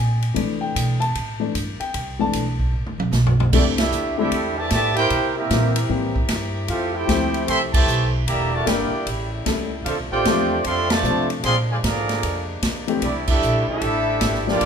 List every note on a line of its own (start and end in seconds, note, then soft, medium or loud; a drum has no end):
0.00 0.34 A#2 loud
0.00 0.31 C4 soft
0.00 0.31 D4 medium
0.00 0.31 G#4 medium
0.00 0.32 G#5 loud
0.22 ride medium
0.34 0.74 C3 medium
0.34 0.97 E3 medium
0.34 0.97 A3 soft
0.34 0.98 D4 medium
0.34 kick soft
0.34 ride medium
0.61 0.98 G5 medium
0.76 1.14 B2 medium
0.76 kick soft
0.76 hi-hat pedal medium
0.76 ride medium
1.00 1.50 A5 loud
1.00 ride medium
1.15 1.53 A2 medium
1.15 kick soft
1.15 ride medium
1.40 1.52 E3 soft
1.40 1.53 A3 soft
1.40 1.53 D4 medium
1.55 1.78 G2 loud
1.55 kick soft
1.55 hi-hat pedal medium
1.55 ride medium
1.80 2.17 G5 medium
1.80 muted upright bass stroke soft
1.80 ride medium
1.94 2.32 C2 loud
1.94 kick soft
1.94 ride medium
2.19 2.42 E3 medium
2.19 2.42 A3 soft
2.19 2.43 D4 medium
2.19 2.70 A5 medium
2.33 2.72 B1 medium
2.33 kick soft
2.33 hi-hat pedal medium
2.33 ride medium
2.60 kick medium
2.73 2.85 A1 medium
2.85 2.97 G1 medium
2.85 mid tom medium
2.98 3.11 E1 medium
2.98 high tom medium
3.12 3.50 B1 loud
3.12 snare medium
3.12 hi-hat pedal medium
3.26 floor tom medium
3.40 floor tom loud
3.52 3.90 C2 loud
3.52 5.09 D3 medium
3.52 3.76 D3 medium
3.52 3.76 G3 medium
3.52 3.65 G3 medium
3.52 5.09 A3 medium
3.52 3.76 A3 medium
3.52 3.65 A3 medium
3.52 6.66 C4 medium
3.52 3.76 C4 medium
3.52 3.65 D4 medium
3.52 5.09 E4 medium
3.52 3.65 E4 medium
3.52 3.76 E4 medium
3.52 3.66 G4 medium
3.52 3.65 D5 medium
3.52 kick medium
3.52 crash loud
3.77 4.15 G3 medium
3.77 4.14 A3 medium
3.77 4.15 D4 medium
3.77 4.15 E4 medium
3.77 4.15 G4 medium
3.77 4.16 A4 medium
3.77 4.15 E5 loud
3.77 snare loud
3.77 ride medium
3.91 4.30 D2 medium
3.91 hi-hat pedal medium
4.18 4.30 D3 medium
4.18 4.55 G3 medium
4.18 4.30 G3 medium
4.18 4.55 A3 medium
4.18 4.30 A3 medium
4.18 4.30 C4 medium
4.18 4.55 D4 medium
4.18 4.55 E4 medium
4.18 4.31 E4 medium
4.18 4.55 G4 medium
4.18 4.55 A4 medium
4.18 4.55 E5 loud
4.31 4.70 E2 medium
4.31 kick soft
4.31 ride medium
4.57 4.69 A2 medium
4.57 4.69 E3 medium
4.57 4.69 A3 medium
4.57 4.71 G4 medium
4.57 4.71 D5 medium
4.57 4.71 E5 medium
4.57 4.71 A5 loud
4.70 4.94 A2 medium
4.70 5.09 A2 loud
4.70 4.94 E3 medium
4.70 4.94 A3 medium
4.70 4.96 G4 medium
4.70 4.96 D5 medium
4.70 4.96 E5 loud
4.70 4.96 A5 loud
4.70 kick soft
4.70 snare medium
4.70 hi-hat pedal medium
4.70 ride medium
4.95 5.32 A#3 loud
4.95 5.33 E4 medium
4.95 5.33 E4 loud
4.95 5.32 G4 loud
4.95 5.33 A#4 loud
4.95 5.34 C5 loud
4.95 5.34 G5 loud
4.95 ride medium
5.10 5.49 C3 medium
5.10 8.24 E4 medium
5.10 8.24 G4 medium
5.10 6.67 A#4 medium
5.10 kick soft
5.10 ride medium
5.36 5.90 G3 medium
5.36 5.90 A#3 medium
5.36 5.90 C4 medium
5.36 5.90 E4 medium
5.36 5.90 G4 medium
5.36 5.90 A#4 medium
5.36 5.90 E5 medium
5.50 5.88 A#2 medium
5.50 5.74 E3 medium
5.50 5.74 G3 medium
5.50 5.74 A#3 medium
5.50 5.74 C4 medium
5.50 5.74 G4 medium
5.50 kick soft
5.50 snare medium
5.50 hi-hat pedal medium
5.50 ride medium
5.76 ride medium
5.89 6.28 A2 medium
5.89 6.13 E3 medium
5.89 6.13 G3 medium
5.89 6.13 A#3 medium
5.89 6.13 C4 medium
5.89 6.13 G4 medium
5.89 kick soft
6.16 kick medium
6.28 6.67 G2 loud
6.28 snare medium
6.28 hi-hat pedal medium
6.28 ride medium
6.67 7.07 F2 loud
6.67 8.25 A3 medium
6.67 6.92 A3 medium
6.67 8.25 C4 medium
6.67 6.92 C4 medium
6.67 6.93 C4 medium
6.67 6.92 F4 medium
6.67 6.93 G4 medium
6.67 6.93 A4 medium
6.67 6.93 F5 loud
6.67 kick soft
6.67 ride medium
6.95 7.46 C4 medium
6.95 7.48 E4 medium
6.95 7.48 G4 medium
6.95 7.47 A4 medium
6.95 7.48 C5 medium
6.95 7.47 G5 loud
7.07 7.47 D2 medium
7.07 7.68 F3 medium
7.07 7.68 A3 medium
7.07 7.68 C4 medium
7.07 7.68 E4 medium
7.07 7.69 G4 medium
7.07 kick soft
7.07 snare medium
7.07 hi-hat pedal medium
7.07 ride medium
7.34 ride medium
7.46 7.85 C2 medium
7.46 7.58 E3 medium
7.46 7.58 A3 loud
7.46 7.59 C4 loud
7.46 7.60 A4 loud
7.46 7.60 E5 loud
7.46 7.60 G5 medium
7.46 7.60 C6 loud
7.46 kick soft
7.46 ride medium
7.73 8.10 C3 medium
7.73 8.11 E3 medium
7.73 8.10 A3 loud
7.73 8.10 G4 medium
7.73 8.10 C5 medium
7.73 8.10 E5 medium
7.73 8.10 A5 loud
7.73 kick loud
7.73 crash loud
7.86 8.25 B1 loud
7.86 hi-hat pedal medium
8.27 8.65 E1 loud
8.27 8.51 D3 medium
8.27 9.06 D3 medium
8.27 8.51 G3 medium
8.27 9.84 G3 medium
8.27 8.51 A#3 medium
8.27 9.06 A#3 medium
8.27 9.84 E4 medium
8.27 8.52 G4 medium
8.27 8.52 D5 medium
8.27 8.52 E5 medium
8.27 8.52 A#5 loud
8.27 kick soft
8.27 ride medium
8.54 8.67 A3 medium
8.54 8.67 F#4 medium
8.54 8.67 A#4 medium
8.54 8.67 D5 medium
8.54 8.67 A5 loud
8.65 8.91 G1 medium
8.65 8.89 G3 medium
8.65 8.90 A#3 medium
8.65 9.07 A#3 medium
8.65 8.90 D4 medium
8.65 9.06 D4 medium
8.65 8.90 E4 medium
8.65 9.33 E4 medium
8.65 9.33 G4 medium
8.65 8.90 A#4 medium
8.65 9.07 A#4 medium
8.65 9.07 D5 medium
8.65 9.33 G5 medium
8.65 kick soft
8.65 snare medium
8.65 hi-hat pedal medium
8.65 ride medium
8.91 muted upright bass stroke soft
9.04 9.45 A1 medium
9.04 9.84 C#3 medium
9.04 9.83 A3 medium
9.04 kick soft
9.04 ride medium
9.45 9.84 C#2 loud
9.45 9.69 G3 medium
9.45 9.69 A3 medium
9.45 9.69 C#4 medium
9.45 9.70 E4 medium
9.45 9.70 A4 medium
9.45 kick soft
9.45 snare medium
9.45 hi-hat pedal medium
9.45 ride medium
9.84 9.98 D2 medium
9.84 12.99 C3 medium
9.84 11.42 A3 medium
9.84 9.97 A3 medium
9.84 9.97 C4 medium
9.84 12.98 D4 medium
9.84 9.97 D4 medium
9.84 9.97 F4 medium
9.84 11.42 F4 medium
9.84 9.97 A4 medium
9.84 9.97 C5 medium
9.84 9.96 F5 medium
9.84 kick soft
9.84 ride medium
9.98 10.11 C2 medium
10.12 10.24 A1 medium
10.12 10.62 A3 medium
10.12 10.61 C4 medium
10.12 10.61 F4 loud
10.12 10.62 G4 medium
10.12 10.61 C5 medium
10.12 10.61 D5 medium
10.12 10.61 G5 loud
10.25 10.63 E2 medium
10.25 10.48 F3 medium
10.25 10.49 A3 medium
10.25 10.49 C4 medium
10.25 10.49 D4 medium
10.25 10.49 A4 medium
10.25 kick soft
10.25 snare medium
10.25 hi-hat pedal medium
10.25 ride medium
10.64 11.02 F2 medium
10.64 10.90 F3 medium
10.64 10.90 A3 loud
10.64 10.91 C4 loud
10.64 10.91 A4 medium
10.64 10.91 D5 loud
10.64 10.91 F5 medium
10.64 10.91 C6 loud
10.64 kick soft
10.64 ride medium
10.90 11.30 C3 medium
10.90 11.30 F3 medium
10.90 11.30 A3 loud
10.90 11.31 F4 medium
10.90 11.31 C5 medium
10.90 11.31 D5 medium
10.90 11.31 A5 loud
10.90 snare loud
10.90 ride medium
11.03 11.42 C3 loud
11.03 11.27 F3 medium
11.03 11.28 A3 medium
11.03 11.28 C4 medium
11.03 11.28 D4 medium
11.03 11.28 A4 medium
11.03 hi-hat pedal medium
11.30 ride medium
11.42 11.82 A#2 medium
11.42 11.55 F3 loud
11.42 13.00 G#3 medium
11.42 11.55 G#3 medium
11.42 13.00 A#3 medium
11.42 11.55 C4 medium
11.42 11.56 G#4 medium
11.42 11.57 D5 medium
11.42 11.57 F5 medium
11.42 11.56 C6 loud
11.42 kick soft
11.42 ride medium
11.71 11.77 D3 medium
11.71 11.77 F3 medium
11.71 11.77 G#3 medium
11.71 11.77 F4 medium
11.71 11.77 C5 medium
11.71 11.77 D5 medium
11.71 11.77 G#5 medium
11.84 12.22 G#2 loud
11.84 12.45 D3 medium
11.84 12.45 F3 medium
11.84 12.45 A#3 medium
11.84 12.46 G#4 medium
11.84 12.46 D5 medium
11.84 12.46 F5 medium
11.84 12.46 A#5 loud
11.84 kick soft
11.84 snare medium
11.84 hi-hat pedal medium
11.84 ride medium
12.09 snare soft
12.09 ride medium
12.23 12.62 F2 medium
12.23 kick soft
12.23 ride medium
12.62 13.01 D2 loud
12.62 kick soft
12.62 snare medium
12.62 hi-hat pedal medium
12.62 ride medium
12.88 13.00 E3 medium
12.88 13.01 A3 medium
12.88 13.01 C4 medium
12.88 13.01 D4 medium
12.88 13.01 G4 medium
12.88 ride medium
13.02 13.41 C2 loud
13.02 14.65 D3 medium
13.02 13.26 G3 medium
13.02 14.59 A3 medium
13.02 13.26 A3 medium
13.02 14.59 C4 medium
13.02 13.27 D4 medium
13.02 13.26 E4 medium
13.02 14.59 E4 medium
13.02 13.26 G4 medium
13.02 13.26 D5 medium
13.02 kick soft
13.02 ride medium
13.27 13.64 G3 medium
13.27 13.65 A3 medium
13.27 13.66 D4 medium
13.27 13.64 E4 medium
13.27 13.66 G4 medium
13.27 13.66 A4 medium
13.27 13.66 E5 loud
13.27 kick medium
13.27 crash medium
13.41 13.66 A#1 loud
13.41 hi-hat pedal medium
13.68 14.44 G3 loud
13.68 14.43 A3 medium
13.68 14.44 D4 loud
13.68 14.43 E4 loud
13.68 14.44 G4 medium
13.68 14.43 A4 loud
13.68 14.44 E5 loud
13.68 muted upright bass stroke soft
13.81 14.20 A1 medium
13.81 kick soft
13.81 ride medium
14.21 14.60 G#1 loud
14.21 kick soft
14.21 snare medium
14.21 hi-hat pedal medium
14.21 ride medium
14.34 snare soft
14.47 14.59 F3 medium
14.47 14.65 F3 medium
14.47 14.59 G3 medium
14.47 14.59 A#3 medium
14.47 14.65 A#3 medium
14.47 14.65 A#3 loud
14.47 14.65 D4 medium
14.47 14.60 D4 medium
14.47 14.65 F4 loud
14.47 14.60 G4 medium
14.47 14.65 G4 loud
14.47 14.65 D5 loud
14.47 snare medium
14.61 14.65 G1 loud
14.61 14.65 G3 medium
14.61 14.65 A#3 medium
14.61 14.65 F4 medium
14.61 kick soft
14.61 ride medium